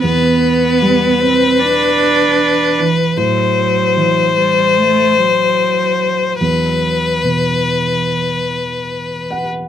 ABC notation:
X:1
M:4/4
L:1/16
Q:1/4=74
K:Em
V:1 name="Violin"
B16 | c16 | B12- B3 z |]
V:2 name="Cello" clef=bass
B,6 C2 D6 E,2 | F,6 G,2 A,2 F,6 | F,4 E,8 z4 |]
V:3 name="Felt piano"
z16 | z16 | z12 z2 f2 |]
V:4 name="Felt piano" clef=bass
[E,,B,,]4 G,12 | A,,4 E,12 | E,,4 B,,12 |]